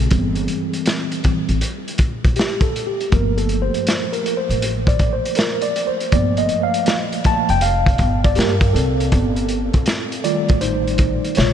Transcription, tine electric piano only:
0.11 1.20 E3 medium
0.11 1.20 G3 soft
0.11 1.20 C4 medium
1.24 1.58 E3 soft
1.24 1.58 G3 soft
1.24 1.58 C4 medium
2.37 2.62 G4 medium
2.62 2.88 A4 medium
2.87 3.13 G4 medium
3.11 6.08 F3 medium
3.11 6.08 A3 medium
3.11 6.08 A#3 medium
3.11 3.38 A#4 medium
3.37 3.63 A4 medium
3.62 4.13 C5 medium
4.13 4.38 A#4 medium
4.37 4.89 C5 medium
4.88 5.13 D5 medium
5.13 5.36 C5 medium
5.37 5.63 A#4 medium
5.62 5.88 D5 loud
5.87 6.13 C5 medium
6.12 7.20 F3 medium
6.12 7.20 A3 medium
6.12 7.21 A#3 medium
6.12 6.38 D5 medium
6.38 6.63 D#5 medium
6.63 6.98 F5 loud
7.24 7.58 F3 medium
7.24 7.58 A3 soft
7.24 7.59 A#3 medium
7.24 7.51 A5 loud
7.50 7.63 G5 loud
7.62 8.26 F5 loud
8.24 8.37 D5 loud
8.36 8.54 A#3 medium
8.36 8.53 G4 medium
8.36 9.09 A#4 medium
8.73 10.21 C4 medium
8.73 10.28 A4 medium
10.24 11.33 D#3 medium
10.24 11.33 G3 medium
10.24 11.33 A3 medium
10.24 10.59 F4 medium
10.24 10.63 D5 medium
10.61 11.33 D#4 medium
10.61 11.39 C5 medium
11.36 11.53 C3 medium
11.36 11.53 C#3 medium
11.36 11.53 G#3 soft
11.36 11.53 F4 medium
11.36 11.53 C#5 loud

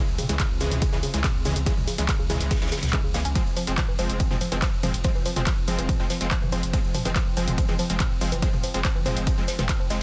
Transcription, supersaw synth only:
0.29 0.35 C#3 medium
0.29 0.35 E3 medium
0.29 0.35 G#3 medium
0.61 0.90 C#3 medium
0.61 0.90 E3 medium
0.61 0.90 G#3 medium
0.93 0.98 C#3 medium
0.93 0.98 E3 medium
0.93 0.98 G#3 medium
1.14 1.19 C#3 medium
1.14 1.19 E3 medium
1.14 1.19 G#3 medium
1.45 1.54 C#3 medium
1.45 1.54 E3 medium
1.45 1.54 G#3 medium
1.66 1.72 C#3 loud
1.66 1.72 E3 medium
1.66 1.72 G#3 loud
1.98 2.04 C#3 medium
1.98 2.04 E3 medium
1.98 2.04 G#3 medium
2.30 2.59 C#3 medium
2.30 2.59 E3 medium
2.30 2.59 G#3 medium
2.62 2.67 C#3 medium
2.62 2.67 E3 medium
2.62 2.67 G#3 medium
2.93 2.99 C#3 medium
2.93 2.99 E3 medium
2.93 2.99 G#3 medium
3.14 3.20 C#3 medium
3.14 3.20 E3 medium
3.14 3.20 G#3 medium
3.35 3.41 F3 loud
3.35 3.41 G#3 medium
3.35 3.41 C4 loud
3.67 3.73 F3 medium
3.67 3.73 G#3 medium
3.67 3.73 C4 loud
3.99 4.28 F3 medium
3.99 4.28 G#3 medium
3.99 4.28 C4 loud
4.31 4.36 F3 medium
4.31 4.36 G#3 medium
4.31 4.36 C4 medium
4.52 4.57 F3 medium
4.52 4.57 G#3 medium
4.52 4.57 C4 medium
4.83 4.92 F3 medium
4.83 4.92 G#3 medium
4.83 4.92 C4 medium
5.04 5.10 F3 loud
5.04 5.10 G#3 medium
5.04 5.10 C4 loud
5.36 5.42 F3 medium
5.36 5.42 G#3 medium
5.36 5.42 C4 medium
5.68 5.97 F3 medium
5.68 5.97 G#3 medium
5.68 5.97 C4 loud
6.00 6.05 F3 medium
6.00 6.05 G#3 medium
6.00 6.05 C4 medium
6.21 6.26 F3 medium
6.21 6.26 G#3 medium
6.21 6.26 C4 medium
6.52 6.61 F3 medium
6.52 6.61 G#3 medium
6.52 6.61 C4 medium
6.73 6.79 F3 loud
6.73 6.79 G#3 medium
6.73 6.79 C4 loud
7.05 7.11 F3 medium
7.05 7.11 G#3 medium
7.05 7.11 C4 medium
7.37 7.66 F3 medium
7.37 7.66 G#3 medium
7.37 7.66 C4 medium
7.69 7.74 F3 medium
7.69 7.74 G#3 medium
7.69 7.74 C4 medium
7.90 7.95 F3 medium
7.90 7.95 G#3 medium
7.90 7.95 C4 medium
8.21 8.30 F3 medium
8.21 8.30 G#3 medium
8.21 8.30 C4 medium
8.42 8.48 F3 loud
8.42 8.48 G#3 medium
8.42 8.48 C4 loud
8.74 8.80 F3 medium
8.74 8.80 G#3 medium
8.74 8.80 C4 medium
9.06 9.35 F3 medium
9.06 9.35 G#3 medium
9.06 9.35 C4 medium
9.38 9.43 F3 medium
9.38 9.43 G#3 medium
9.38 9.43 C4 medium
9.59 9.64 F3 medium
9.59 9.64 G#3 medium
9.59 9.64 C4 medium
9.90 9.99 F3 medium
9.90 9.99 G#3 medium
9.90 9.99 C4 medium

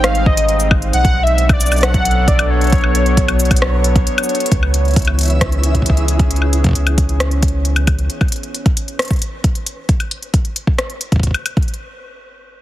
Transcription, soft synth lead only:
0.04 0.28 F5 loud
0.26 0.71 D#5 loud
0.93 1.25 F#5 loud
1.23 1.53 E5 loud
1.53 1.85 D5 loud
1.83 2.29 F#5 loud
2.28 2.52 D5 loud
2.50 4.07 C#5 loud

